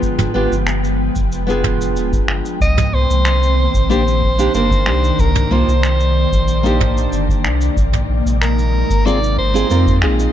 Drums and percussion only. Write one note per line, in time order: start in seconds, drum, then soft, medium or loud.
0.02 kick medium
0.02 cabasa medium
0.18 mid tom medium
0.18 cabasa soft
0.52 cabasa medium
0.67 finger snap medium
0.67 cabasa medium
0.84 cabasa soft
1.16 kick medium
1.16 cabasa medium
1.32 cabasa medium
1.49 cabasa soft
1.64 kick medium
1.64 mid tom medium
1.81 cabasa medium
1.96 cabasa medium
2.13 kick medium
2.13 cabasa medium
2.28 finger snap medium
2.28 kick medium
2.45 cabasa medium
2.61 kick loud
2.61 cabasa medium
2.78 mid tom medium
2.78 cabasa soft
3.11 cabasa medium
3.25 finger snap medium
3.25 cabasa medium
3.43 cabasa medium
3.74 kick loud
3.74 cabasa medium
3.91 cabasa medium
4.08 cabasa soft
4.22 kick medium
4.39 cabasa medium
4.54 cabasa medium
4.71 kick loud
4.71 cabasa soft
4.86 finger snap medium
5.04 cabasa medium
5.19 kick loud
5.19 cabasa medium
5.35 mid tom medium
5.35 cabasa soft
5.69 cabasa medium
5.83 finger snap medium
5.83 cabasa medium
6.00 cabasa soft
6.32 kick loud
6.32 cabasa medium
6.48 cabasa medium
6.65 cabasa soft
6.80 kick medium
6.80 mid tom medium
6.98 cabasa medium
7.13 cabasa medium
7.29 kick loud
7.29 cabasa soft
7.45 finger snap medium
7.61 cabasa medium
7.77 kick loud
7.77 cabasa medium
7.93 mid tom medium
7.93 cabasa soft
8.27 cabasa medium
8.42 finger snap medium
8.42 cabasa medium
8.59 cabasa soft
8.90 kick loud
8.90 cabasa medium
9.07 cabasa medium
9.24 cabasa medium
9.38 kick medium
9.56 cabasa medium
9.71 cabasa medium
9.87 kick loud
9.87 cabasa medium
10.02 finger snap medium
10.20 cabasa medium